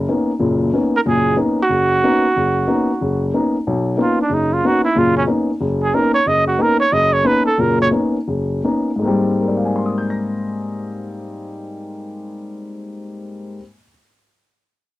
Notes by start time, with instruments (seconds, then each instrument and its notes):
0.08 grand piano A#3 B3 C#4 D#4
0.40 grand piano F#1 A#2
0.73 grand piano A#3 B3 C#4 D#4
0.96 trumpet A#4
1.06 grand piano F#1 A#2, trumpet G#4
1.36 grand piano A#3 B3 C#4 D#4
1.62 trumpet F#4
1.69 grand piano F#1
2.04 grand piano A#3 B3 C#4 D#4
2.37 grand piano F#1
2.67 grand piano A#3 B3 C#4 D#4
3.01 grand piano F#1
3.33 grand piano A#3 B3 C#4 D#4
3.67 grand piano B1
3.97 grand piano A#3 B3 C#4 D#4
4.02 trumpet F4
4.21 trumpet D4
4.30 grand piano F#1
4.34 trumpet D#4
4.53 trumpet F4
4.64 grand piano A#3 B3 C#4 D#4, trumpet F#4
4.85 trumpet E4
4.96 grand piano F#1 A#2, trumpet F4
5.17 trumpet C#4
5.27 grand piano A#3 B3 C#4 D#4
5.61 grand piano F#1
5.83 trumpet G#4
5.94 grand piano A#3 B3 C#4 D#4, trumpet A#4
6.14 trumpet C#5
6.26 grand piano F#1, trumpet D#5
6.47 trumpet F#4
6.58 grand piano A#3 B3 C#4 D#4, trumpet A#4
6.80 trumpet C#5
6.92 grand piano F#1, trumpet D#5
7.13 trumpet C#5
7.24 grand piano A#3 B3 C#4 D#4, trumpet B4
7.46 trumpet A4
7.58 grand piano F#1 A#2, trumpet A#4
7.82 trumpet C#5
7.91 grand piano A#3 B3 C#4 D#4
8.28 grand piano F#1
8.64 grand piano A#3 B3 C#4 D#4
8.96 grand piano G#2 G#3
9.02 grand piano A#3 C4
9.07 grand piano G3
9.41 grand piano A#4
9.48 grand piano D5
9.57 grand piano F5
9.65 grand piano G#5
9.76 grand piano C6
9.86 grand piano D#6
9.98 grand piano G6
10.10 grand piano A#6